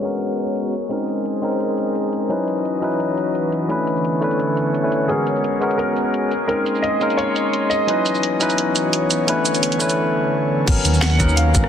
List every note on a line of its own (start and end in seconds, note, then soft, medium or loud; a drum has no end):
0.00 0.02 G#3 medium
0.00 0.72 G#3 medium
0.00 0.03 B3 medium
0.00 0.72 B3 medium
0.00 0.04 C#4 medium
0.00 0.72 C#4 medium
0.00 0.04 F#4 medium
0.00 0.72 F#4 medium
0.00 0.72 G#4 medium
0.00 0.05 A#4 medium
0.00 0.72 A#4 medium
0.00 0.72 C#5 medium
0.00 closed hi-hat medium
0.00 shaker medium
0.04 0.73 F#4 medium
0.04 0.73 A#4 medium
0.12 closed hi-hat soft
0.12 shaker soft
0.21 closed hi-hat loud
0.38 closed hi-hat medium
0.38 shaker medium
0.56 closed hi-hat medium
0.73 2.29 G#4 medium
0.73 2.29 A#4 medium
0.73 2.29 C5 medium
0.73 2.29 D#5 medium
0.73 closed hi-hat medium
0.73 shaker medium
0.89 1.40 G#3 medium
0.89 1.41 C4 medium
0.89 1.41 C#4 medium
0.89 1.42 D#4 medium
0.89 1.42 A#4 medium
0.89 closed hi-hat medium
1.08 closed hi-hat medium
1.08 shaker medium
1.17 shaker soft
1.26 closed hi-hat medium
1.42 2.28 G#3 medium
1.42 2.28 C4 medium
1.42 2.28 C#4 medium
1.42 2.29 D#4 medium
1.42 2.29 A#4 medium
1.42 closed hi-hat medium
1.42 shaker medium
1.52 closed hi-hat soft
1.52 shaker soft
1.60 closed hi-hat medium
1.78 closed hi-hat medium
1.78 shaker medium
1.95 closed hi-hat medium
2.13 closed hi-hat medium
2.13 shaker medium
2.29 5.07 E3 medium
2.29 2.80 F#3 medium
2.29 2.80 C#4 medium
2.29 2.81 D#4 medium
2.29 2.81 E4 medium
2.29 3.69 F#4 medium
2.29 3.69 B4 medium
2.29 2.81 B4 medium
2.29 3.69 D#5 medium
2.29 closed hi-hat medium
2.48 closed hi-hat medium
2.48 shaker medium
2.57 shaker soft
2.65 closed hi-hat medium
2.81 3.67 F#3 medium
2.81 3.67 C#4 medium
2.81 3.68 D#4 medium
2.81 3.68 E4 medium
2.81 3.69 B4 medium
2.81 closed hi-hat medium
2.81 shaker medium
2.92 closed hi-hat soft
2.92 shaker soft
3.00 closed hi-hat medium
3.18 closed hi-hat medium
3.18 shaker medium
3.35 closed hi-hat medium
3.52 closed hi-hat medium
3.52 shaker medium
3.68 5.08 D3 medium
3.68 4.19 A3 medium
3.68 5.08 B3 medium
3.68 4.20 C#4 medium
3.68 4.20 D4 medium
3.68 4.21 E4 medium
3.68 5.08 A4 medium
3.68 4.21 B4 medium
3.68 6.29 C#5 medium
3.68 closed hi-hat medium
3.87 closed hi-hat medium
3.87 shaker medium
3.96 shaker soft
4.05 closed hi-hat medium
4.21 4.81 A3 medium
4.21 4.81 C#4 medium
4.21 4.82 D4 medium
4.21 4.82 E4 medium
4.21 4.83 B4 medium
4.21 closed hi-hat medium
4.21 shaker medium
4.31 closed hi-hat soft
4.31 shaker soft
4.40 closed hi-hat medium
4.57 closed hi-hat medium
4.57 shaker medium
4.74 closed hi-hat medium
4.83 5.07 A3 medium
4.83 5.07 C#4 medium
4.83 5.07 D4 medium
4.83 5.08 E4 medium
4.83 5.08 B4 medium
4.92 closed hi-hat medium
4.92 shaker medium
5.08 5.59 G#3 medium
5.08 5.59 B3 medium
5.08 6.30 B3 medium
5.08 5.60 C#4 medium
5.08 6.30 F#4 medium
5.08 5.60 F#4 medium
5.08 5.81 G#4 medium
5.08 7.86 G#4 medium
5.08 6.30 A#4 medium
5.08 5.60 A#4 medium
5.08 closed hi-hat medium
5.27 closed hi-hat medium
5.27 shaker medium
5.36 shaker soft
5.44 closed hi-hat medium
5.60 6.30 G#3 medium
5.60 6.30 B3 medium
5.60 6.30 C#4 medium
5.60 6.31 F#4 medium
5.60 6.31 A#4 medium
5.60 closed hi-hat medium
5.60 shaker medium
5.71 closed hi-hat soft
5.71 shaker soft
5.78 6.46 A#4 medium
5.78 closed hi-hat medium
5.97 closed hi-hat medium
5.97 shaker medium
6.14 closed hi-hat medium
6.31 7.87 A#3 medium
6.31 9.25 D#5 medium
6.31 7.87 C6 medium
6.31 closed hi-hat medium
6.31 shaker medium
6.47 6.98 G#3 medium
6.47 6.99 C4 medium
6.47 6.99 C#4 medium
6.47 7.00 D#4 medium
6.47 6.84 A#4 medium
6.47 7.00 A#4 medium
6.47 closed hi-hat medium
6.66 closed hi-hat medium
6.66 shaker medium
6.75 shaker soft
6.82 7.19 D#5 loud
6.82 closed hi-hat medium
7.00 7.86 G#3 medium
7.00 7.86 A#3 medium
7.00 7.86 C#4 medium
7.00 7.87 D#4 medium
7.00 7.87 A#4 medium
7.00 closed hi-hat medium
7.00 shaker medium
7.10 closed hi-hat soft
7.10 shaker soft
7.17 7.72 C#5 loud
7.17 closed hi-hat medium
7.36 closed hi-hat medium
7.36 shaker medium
7.53 closed hi-hat medium
7.70 8.71 D#5 loud
7.70 closed hi-hat medium
7.70 shaker medium
7.87 10.65 E3 medium
7.87 8.38 F#3 medium
7.87 10.65 B3 medium
7.87 8.38 C#4 medium
7.87 8.39 D#4 medium
7.87 8.39 E4 medium
7.87 9.27 F#4 medium
7.87 8.39 B4 medium
7.87 10.65 C#5 medium
7.87 closed hi-hat medium
8.06 closed hi-hat medium
8.06 shaker medium
8.15 shaker soft
8.23 closed hi-hat medium
8.39 9.25 F#3 medium
8.39 9.26 C#4 medium
8.39 9.26 D#4 medium
8.39 9.26 E4 medium
8.39 9.27 B4 medium
8.39 closed hi-hat medium
8.39 shaker medium
8.50 closed hi-hat soft
8.50 shaker soft
8.58 closed hi-hat medium
8.76 closed hi-hat medium
8.76 shaker medium
8.93 closed hi-hat medium
9.11 closed hi-hat medium
9.11 shaker medium
9.27 10.66 D3 medium
9.27 9.78 A3 medium
9.27 9.78 C#4 medium
9.27 9.78 D4 medium
9.27 9.79 E4 medium
9.27 10.66 A4 medium
9.27 9.79 B4 medium
9.27 closed hi-hat medium
9.45 closed hi-hat medium
9.45 shaker medium
9.55 closed hi-hat soft
9.55 shaker soft
9.63 closed hi-hat medium
9.72 closed hi-hat soft
9.79 9.97 A3 medium
9.79 9.97 C#4 medium
9.79 9.98 D4 medium
9.79 9.98 E4 medium
9.79 9.98 B4 medium
9.79 closed hi-hat medium
9.79 shaker medium
9.89 closed hi-hat soft
9.89 shaker soft
10.66 10.76 G#1 loud
10.66 11.17 F#3 medium
10.66 11.69 F#3 medium
10.66 11.18 B3 medium
10.66 11.69 B3 medium
10.66 11.69 C#4 medium
10.66 11.18 C#4 medium
10.66 11.69 A#4 medium
10.66 11.19 A#4 medium
10.66 kick loud
10.66 closed hi-hat loud
10.66 crash loud
10.85 11.53 D#2 medium
10.85 closed hi-hat medium
10.85 shaker medium
10.94 shaker soft
11.01 11.34 F#5 loud
11.01 snare loud
11.01 closed hi-hat loud
11.18 11.69 F#3 medium
11.18 11.69 B3 medium
11.18 11.69 C#4 medium
11.18 11.69 A#4 loud
11.18 kick medium
11.18 cross-stick medium
11.18 closed hi-hat medium
11.18 shaker medium
11.29 shaker soft
11.36 11.69 F5 loud
11.36 closed hi-hat loud
11.55 11.63 G#1 medium
11.55 kick loud
11.55 closed hi-hat medium
11.55 shaker medium
11.64 cross-stick medium